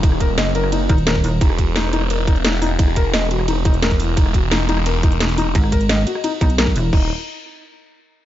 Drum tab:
CC |----------------|----------------|----------------|----------------|
RD |b-b-b-b-b-b-b-b-|b-b-b-b-b-b-b-b-|b-b-b-b-b-b-b-b-|b-b-b-b-b-b-b-b-|
HH |x-x-x-x-x-xxxxo-|x-x-x-x-x-xxxxo-|x-x-x-x-x-xxxxo-|x-x-x-x-x-xxxxo-|
SD |-r--o--r----o---|-r--o-rr----o---|-r--o--r----o---|-r--o-rr----o---|
BD |o-o-------o--o--|o-o-------o-----|o-o-------o--o--|o-o-------o-----|

CC |----------------|x---------------|
RD |b-b-b-b-b-b-b-b-|----------------|
HH |x-xxx-x-x-xxxxo-|----------------|
SD |-r--o--r----o---|----------------|
BD |o-o-------o--o--|o---------------|